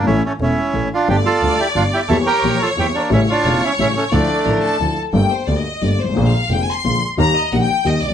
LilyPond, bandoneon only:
\new Staff \with { instrumentName = "Bandoneon" } { \time 3/4 \key d \minor \tempo 4 = 177 <cis' e'>8 <a cis'>8 <cis' e'>4. <d' f'>8 | <d' g'>8 <f' a'>4 <e' g'>8 <d' f'>8 <e' g'>8 | <e' a'>8 <g' bes'>4 <f' a'>8 <e' g'>8 <bes d'>8 | <cis' e'>8 <d' f'>4 <cis' e'>8 <cis' e'>8 <a cis'>8 |
<a d'>2 r4 | \key g \minor r2. | r2. | r2. | }